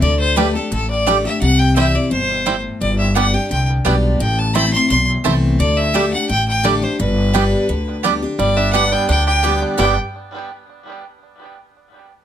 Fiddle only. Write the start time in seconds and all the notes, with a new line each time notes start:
0.02 D5
0.20 C5
0.36 B4
0.55 A4
0.73 A4
0.91 D5
1.26 E5
1.42 F#5
1.59 G5
1.76 E5
1.95 D5
2.12 C5
2.81 D5
2.99 E5
3.16 F#5
3.34 G5
3.51 G5
4.21 G5
4.39 A5
4.55 B5
4.73 C6
4.90 C6
5.59 D5
5.77 E5
6.13 F#5
6.30 G5
6.48 G5
6.64 D5
6.84 C5
7.01 B4
8.39 D5
8.57 E5
8.73 F#5
8.92 G5
9.09 G5
9.27 G5
9.79 G5